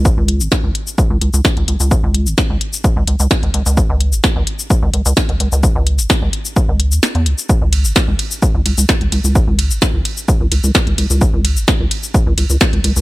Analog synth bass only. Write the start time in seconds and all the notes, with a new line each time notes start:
0.17 C#2
0.41 G#1
0.64 C#2
1.10 C#2
1.22 C#2
1.34 C#2
1.57 C#2
1.68 C#2
1.80 C#2
2.03 C#2
2.27 G#1
2.50 C#2
2.96 C#2
3.08 C#2
3.20 C#2
3.43 C#2
3.54 C#2
3.66 C#2
3.90 C#2
4.13 G#1
4.36 C#2
4.83 C#2
4.94 C#2
5.06 C#2
5.29 C#2
5.40 C#2
5.52 C#2
5.75 C#2
5.99 G#1
6.22 C#2
6.69 C#2
6.92 D#2
7.15 E2
7.26 C#2
7.62 C#2
7.85 G#1
8.08 C#2
8.55 C#2
8.66 C#2
8.78 C#2
9.01 C#2
9.12 C#2
9.24 C#2
9.47 C#2
9.71 G#1
9.94 C#2
10.41 C#2
10.52 C#2
10.64 C#2
10.87 C#2
10.98 C#2
11.10 C#2
11.34 C#2
11.57 G#1
11.80 C#2
12.27 C#2
12.38 C#2
12.50 C#2
12.73 C#2
12.84 C#2
12.96 C#2